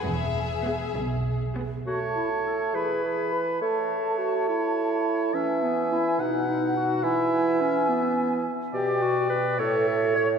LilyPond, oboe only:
\new Staff \with { instrumentName = "Oboe" } { \time 6/8 \key e \mixolydian \tempo 4. = 70 r2. | cis''4. b'4. | cis''4. cis''4. | e''4. fis''4. |
e''2~ e''8 r8 | \key g \lydian d''4. cis''4. | }